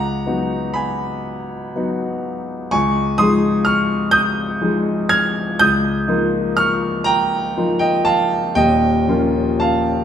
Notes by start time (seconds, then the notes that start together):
Already playing: C#2 F#5 A#5
0.26 F#3 B3 D#4 F#4
0.74 G#5 B5
1.75 F#3 B3 D#4 F#4
2.71 C#2 G#5 C#6
3.18 F3 G#3 D#4 G#4 C6 D#6
3.65 C#6 F6
4.11 D#6 G6
4.61 F3 G#3 D#4 G#4
5.09 F6 G#6
5.59 C#2 D#6 G6
6.08 F3 A#3 D#4 F4
6.57 C#6 F6
7.04 G5 A#5
7.57 F3 A#3 D#4 F4
7.79 D#5 G5
8.05 F5 A5
8.55 D#1 D#2 D#5 G5
9.08 F3 A#3 C#4 F4
9.60 F5 A5